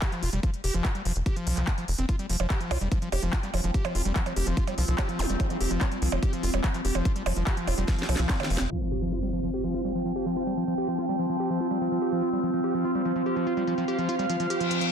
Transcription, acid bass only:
0.02 0.12 G4 loud
0.12 0.22 F3 loud
0.23 0.29 F4 medium
0.33 0.40 G3 loud
0.43 0.50 F3 medium
0.64 0.74 G4 loud
0.74 0.84 F3 loud
0.85 0.92 F4 medium
0.95 1.02 G3 loud
1.05 1.12 F3 medium
1.26 1.36 G4 loud
1.36 1.46 F3 loud
1.47 1.57 F3 loud
1.57 1.69 F3 medium
1.67 1.72 G3 loud
1.78 1.85 F3 medium
1.99 2.05 C4 medium
2.09 2.16 F4 medium
2.19 2.26 G3 loud
2.30 2.36 F3 medium
2.40 2.47 F3 medium
2.50 2.60 G4 loud
2.61 2.70 F3 loud
2.71 2.78 F4 medium
2.81 2.88 G3 loud
2.92 2.98 F3 medium
3.02 3.09 F3 medium
3.12 3.22 G4 loud
3.23 3.32 F3 loud
3.33 3.40 F4 medium
3.43 3.50 G3 loud
3.54 3.60 F3 medium
3.64 3.71 F3 medium
3.74 3.84 G4 loud
3.85 3.95 F3 loud
3.95 4.02 F4 medium
4.05 4.12 G3 loud
4.16 4.23 F3 medium
4.26 4.33 F3 medium
4.36 4.46 G4 loud
4.47 4.57 F3 loud
4.57 4.64 F4 medium
4.67 4.74 G3 loud
4.78 4.85 F3 medium
4.88 4.95 F3 medium
4.98 5.08 G4 loud
5.09 5.19 F3 loud
5.19 5.26 F4 medium
5.30 5.36 G3 loud
5.40 5.47 F3 medium
5.50 5.57 F3 medium
5.61 5.70 G4 loud
5.71 5.81 F3 loud
5.81 5.88 F4 medium
5.92 5.98 G3 loud
6.02 6.09 F3 medium
6.12 6.19 F3 medium
6.23 6.32 G4 loud
6.33 6.43 F3 loud
6.43 6.50 F4 medium
6.54 6.61 G3 loud
6.64 6.71 F3 medium
6.74 6.81 F3 medium
6.85 6.95 G4 loud
6.95 7.05 F3 loud
7.05 7.12 F4 medium
7.16 7.23 G3 loud
7.26 7.33 F3 medium
7.36 7.43 F3 medium
7.47 7.57 G4 loud
7.57 7.67 F3 loud
7.67 7.74 F4 medium
7.78 7.85 G3 loud
7.88 7.95 F3 medium
7.98 8.05 F3 medium
8.09 8.16 F3 loud
8.19 8.29 F3 loud
8.30 8.36 F3 medium
8.40 8.50 D#3 medium
8.50 8.57 F3 loud
8.71 8.78 F3 medium
8.81 8.88 F3 medium
8.92 9.01 G4 loud
9.02 9.12 F3 loud
9.12 9.19 F4 medium
9.23 9.29 G3 loud
9.33 9.40 F3 medium
9.43 9.50 F3 medium
9.54 9.63 G4 loud
9.64 9.74 F3 loud
9.74 9.81 F4 medium
9.85 9.92 G3 loud
9.95 10.02 F3 medium
10.05 10.12 F3 medium
10.16 10.26 G4 loud
10.26 10.36 F3 loud
10.36 10.43 F4 medium
10.47 10.54 G3 loud
10.57 10.64 F3 medium
10.67 10.74 F3 medium
10.78 10.88 G4 loud
10.88 10.98 F3 loud
10.99 11.05 F4 medium
11.09 11.16 G3 loud
11.19 11.26 F3 medium
11.30 11.36 F3 medium
11.40 11.50 G4 loud
11.50 11.60 F3 loud
11.61 11.67 F4 medium
11.71 11.78 G3 loud
11.81 11.88 F3 medium
11.92 11.98 F3 medium
12.02 12.12 G4 loud
12.12 12.22 F3 loud
12.23 12.29 F4 medium
12.33 12.40 G3 loud
12.43 12.50 F3 medium
12.54 12.60 F3 medium
12.64 12.74 G4 loud
12.74 12.84 F3 loud
12.85 12.92 F4 medium
12.95 13.02 G3 loud
13.05 13.12 F3 medium
13.16 13.23 F3 medium
13.26 13.36 G4 loud
13.36 13.46 F3 loud
13.47 13.54 F4 medium
13.57 13.64 G3 loud
13.67 13.74 F3 medium
13.78 13.85 F3 medium
13.88 13.98 G4 loud
13.98 14.08 F3 loud
14.09 14.16 F4 medium
14.19 14.26 G3 loud
14.29 14.36 F3 medium
14.40 14.47 F3 medium
14.50 14.60 G4 loud
14.60 14.70 F3 loud
14.71 14.81 F3 loud
14.81 14.92 F3 medium

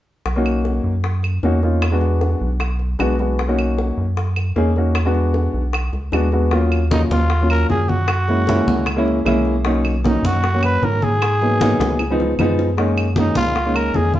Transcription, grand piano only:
0.36 0.91 A#3 medium
0.36 0.91 C#4 medium
0.36 0.91 D#4 medium
0.36 0.92 F#4 medium
1.43 1.57 A#3 medium
1.43 1.57 C#4 medium
1.43 1.58 D#4 medium
1.43 1.58 F#4 medium
1.62 1.82 A#3 medium
1.62 1.83 C#4 medium
1.62 1.83 D#4 medium
1.62 1.83 F4 medium
1.91 2.47 G#3 medium
1.91 2.47 B3 medium
1.91 2.47 D4 medium
1.91 2.48 F#4 medium
2.99 3.13 G#3 medium
2.99 3.14 B3 medium
2.99 3.14 D4 medium
2.99 3.14 F#4 medium
3.19 3.39 G#3 medium
3.19 3.39 B3 medium
3.19 3.39 D4 medium
3.19 3.40 F#4 medium
3.48 4.03 A#3 medium
3.48 4.03 C#4 medium
3.48 4.04 D#4 medium
3.48 4.04 F#4 medium
4.56 4.70 A#3 medium
4.56 4.70 C#4 medium
4.56 4.71 D#4 medium
4.56 4.71 G#4 medium
4.76 4.96 A#3 medium
4.76 4.96 C#4 medium
4.76 4.96 D#4 medium
4.76 4.97 F#4 medium
5.05 5.60 G#3 medium
5.05 5.60 B3 medium
5.05 5.61 D4 medium
5.05 5.61 F#4 medium
6.12 6.26 G#3 medium
6.12 6.27 B3 medium
6.12 6.27 D4 medium
6.12 6.27 F#4 medium
6.33 6.52 G#3 medium
6.33 6.52 B3 medium
6.33 6.53 D4 medium
6.33 6.53 F#4 medium
6.52 6.79 F#3 medium
6.52 6.80 A#3 medium
6.52 6.80 C#4 medium
6.52 6.80 F4 medium
6.91 7.26 F#3 medium
6.91 7.26 A#3 medium
6.91 7.26 C#4 medium
6.91 7.26 F4 medium
7.41 7.95 F#3 medium
7.41 7.96 A#3 medium
7.41 7.96 C#4 medium
7.41 7.96 F4 medium
8.28 8.42 G#3 medium
8.28 8.42 A#3 medium
8.28 8.42 C#4 medium
8.28 8.43 E4 medium
8.48 8.82 G#3 medium
8.48 8.82 A#3 medium
8.48 8.82 C#4 medium
8.48 8.83 E4 medium
8.96 9.17 G#3 medium
8.96 9.17 A#3 medium
8.96 9.18 C#4 medium
8.96 9.18 E4 medium
9.25 9.53 G#3 medium
9.25 9.54 A#3 medium
9.25 9.54 C#4 medium
9.25 9.54 E4 loud
9.65 9.93 F#3 medium
9.65 9.93 A#3 medium
9.65 9.93 C#4 medium
9.65 9.93 D#4 medium
10.04 10.38 F#3 medium
10.04 10.39 A#3 medium
10.04 10.39 C#4 medium
10.04 10.39 D#4 medium
10.53 11.08 F#3 medium
10.53 11.08 A#3 medium
10.53 11.09 C#4 medium
10.53 11.09 F#4 medium
11.41 11.55 F#3 medium
11.41 11.55 A#3 medium
11.41 11.55 B3 medium
11.41 11.56 D#4 medium
11.60 11.95 F#3 medium
11.60 11.95 A#3 medium
11.60 11.95 B3 medium
11.60 11.96 D#4 medium
12.10 12.31 F3 medium
12.10 12.31 G#3 medium
12.10 12.31 B3 medium
12.10 12.31 D#4 loud
12.40 12.67 F3 medium
12.40 12.67 G#3 medium
12.40 12.67 B3 medium
12.40 12.67 D#4 loud
12.77 13.05 G#3 medium
12.77 13.05 A#3 medium
12.77 13.06 C#4 medium
12.77 13.06 D#4 medium
13.18 13.52 G#3 medium
13.18 13.52 A#3 medium
13.18 13.52 C#4 medium
13.18 13.53 D#4 medium
13.65 14.20 G#3 medium
13.65 14.20 A#3 medium
13.65 14.20 C#4 medium
13.65 14.20 D#4 medium

